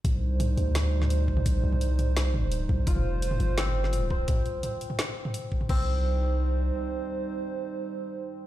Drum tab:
CC |----------------|----------------|----------------|----------------|
HH |x---x-x-x---x---|x---x-x-x---x---|x---x-x-x---x---|x-x-x-x-x---x---|
SD |--------o--o----|--------o-------|--------o--o----|--------o-------|
T2 |o---o---o--o---o|---o--o---o---o-|-o---o---o--o---|o---o--o---o---o|
BD |o-------------o-|o-------------o-|o-------------o-|o-------------o-|

CC |x---------------|----------------|
HH |----------------|----------------|
SD |----------------|----------------|
T2 |----------------|----------------|
BD |o---------------|----------------|